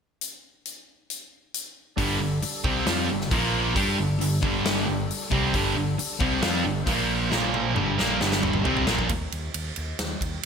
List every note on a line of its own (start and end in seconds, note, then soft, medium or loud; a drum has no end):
0.21 closed hi-hat medium
0.66 closed hi-hat medium
1.10 closed hi-hat medium
1.54 closed hi-hat medium
1.96 2.19 G1 loud
1.96 2.19 G2 medium
1.96 2.19 D3 medium
1.96 3.30 G3 medium
1.96 2.20 G3 loud
1.96 3.29 D4 medium
1.96 3.29 A4 medium
1.96 kick loud
1.96 open hi-hat medium
2.20 2.41 G1 medium
2.20 2.38 G2 medium
2.20 2.38 D3 medium
2.42 muted distorted electric guitar stroke medium
2.42 muted picked electric bass stroke soft
2.42 open hi-hat medium
2.64 2.86 C2 loud
2.64 2.86 C3 medium
2.64 2.87 G3 medium
2.64 2.86 C4 medium
2.64 kick loud
2.87 3.08 F2 medium
2.87 3.09 F3 medium
2.87 3.09 C4 medium
2.87 3.09 F4 loud
2.87 snare loud
2.87 open hi-hat medium
3.09 3.31 G1 medium
3.09 3.27 G2 medium
3.09 3.30 D3 medium
3.21 snare soft
3.28 3.73 A#1 loud
3.28 3.75 A#2 medium
3.28 3.74 F3 loud
3.28 3.74 A#3 medium
3.28 3.75 A#3 loud
3.28 3.75 F4 medium
3.28 3.74 C5 medium
3.28 kick loud
3.28 open hi-hat medium
3.73 3.97 G2 loud
3.73 6.83 G3 medium
3.73 3.97 G3 medium
3.73 6.83 D4 medium
3.73 3.97 D4 loud
3.73 3.98 G4 loud
3.73 6.83 A4 medium
3.73 kick loud
3.73 open hi-hat medium
3.97 4.19 G1 medium
3.97 4.16 G2 medium
3.97 4.16 D3 medium
4.19 4.42 G1 medium
4.19 4.37 G2 medium
4.19 4.38 D3 medium
4.19 open hi-hat medium
4.41 4.85 G1 loud
4.41 4.85 G2 medium
4.41 4.85 D3 medium
4.41 4.86 G3 medium
4.41 kick loud
4.65 snare loud
4.65 open hi-hat medium
4.86 5.09 G1 medium
4.86 5.05 G2 medium
4.86 5.05 D3 medium
5.11 open hi-hat medium
5.30 5.53 C2 medium
5.30 5.53 C3 loud
5.30 5.53 G3 medium
5.30 5.53 C4 loud
5.30 kick medium
5.53 5.75 G1 loud
5.53 5.74 G2 medium
5.53 5.75 D3 loud
5.53 5.76 G3 loud
5.53 kick loud
5.53 open hi-hat medium
5.75 5.98 G1 medium
5.75 5.94 G2 medium
5.75 5.94 D3 medium
5.98 muted distorted electric guitar stroke medium
5.98 muted picked electric bass stroke soft
5.98 open hi-hat medium
6.19 6.41 C2 loud
6.19 6.41 C3 medium
6.19 6.42 G3 medium
6.19 6.41 C4 medium
6.19 kick loud
6.41 6.64 F2 loud
6.41 6.64 F3 medium
6.41 6.64 C4 loud
6.41 6.64 F4 loud
6.41 snare loud
6.41 open hi-hat medium
6.64 6.86 G1 medium
6.64 6.82 G2 medium
6.64 6.83 D3 medium
6.84 7.28 A#1 medium
6.84 7.29 A#2 medium
6.84 7.29 F3 medium
6.84 7.74 A#3 medium
6.84 7.31 A#3 loud
6.84 7.74 F4 medium
6.84 7.74 C5 medium
6.84 kick loud
6.84 open hi-hat medium
7.31 7.73 A#1 medium
7.31 7.75 A#2 loud
7.31 7.75 F3 loud
7.31 7.76 A#3 loud
7.31 snare medium
7.54 high tom medium
7.74 7.97 G1 medium
7.74 7.97 G2 medium
7.74 7.97 D3 medium
7.74 9.07 G3 medium
7.74 7.98 G3 loud
7.74 9.07 D4 medium
7.74 9.07 A4 medium
7.74 mid tom medium
7.98 8.19 A#1 loud
7.98 8.20 A#2 medium
7.98 8.20 F3 medium
7.98 8.20 A#3 loud
7.98 snare medium
8.20 8.62 G1 medium
8.20 8.64 G2 medium
8.20 8.63 D3 loud
8.20 8.63 G3 loud
8.20 snare medium
8.32 snare medium
8.43 mid tom medium
8.53 mid tom medium
8.63 8.86 C2 medium
8.63 8.86 C3 medium
8.63 8.86 G3 loud
8.63 8.87 C4 loud
8.63 floor tom loud
8.77 floor tom medium
8.87 9.08 A#1 medium
8.87 9.09 A#2 medium
8.87 9.09 F3 loud
8.87 9.10 A#3 medium
8.87 snare loud
8.99 kick medium
9.09 9.24 D#2 medium
9.09 kick loud
9.09 ride medium
9.32 9.47 D#2 medium
9.32 ride medium
9.54 9.69 D#2 medium
9.54 ride medium
9.76 9.91 D#2 medium
9.76 ride medium
9.99 10.13 D#2 medium
9.99 snare loud
9.99 ride medium
10.21 10.36 D#2 medium
10.21 kick medium
10.21 ride medium